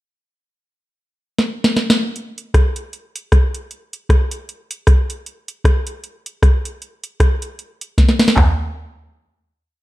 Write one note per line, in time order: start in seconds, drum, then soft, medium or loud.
1.39 snare medium
1.64 snare medium
1.76 snare medium
1.90 snare loud
2.16 closed hi-hat medium
2.38 closed hi-hat medium
2.54 kick loud
2.54 cross-stick loud
2.54 closed hi-hat medium
2.76 closed hi-hat loud
2.93 closed hi-hat medium
3.16 closed hi-hat loud
3.32 kick loud
3.32 cross-stick medium
3.32 closed hi-hat medium
3.55 closed hi-hat medium
3.71 closed hi-hat medium
3.93 closed hi-hat medium
4.09 kick loud
4.09 cross-stick loud
4.09 closed hi-hat medium
4.31 closed hi-hat loud
4.49 closed hi-hat medium
4.71 closed hi-hat loud
4.87 kick loud
4.87 cross-stick medium
4.87 closed hi-hat medium
5.10 closed hi-hat medium
5.26 closed hi-hat medium
5.48 closed hi-hat medium
5.64 kick loud
5.64 cross-stick loud
5.64 closed hi-hat medium
5.87 closed hi-hat loud
6.04 closed hi-hat medium
6.26 closed hi-hat medium
6.42 kick loud
6.42 cross-stick medium
6.42 closed hi-hat medium
6.65 closed hi-hat medium
6.82 closed hi-hat medium
7.04 closed hi-hat medium
7.20 kick loud
7.20 cross-stick loud
7.20 closed hi-hat medium
7.42 closed hi-hat loud
7.59 closed hi-hat medium
7.81 closed hi-hat medium
7.98 kick loud
7.98 snare medium
7.98 closed hi-hat medium
8.09 snare medium
8.19 snare loud
8.19 open hi-hat soft
8.28 snare medium
8.36 kick medium
8.36 clap medium
8.36 floor tom medium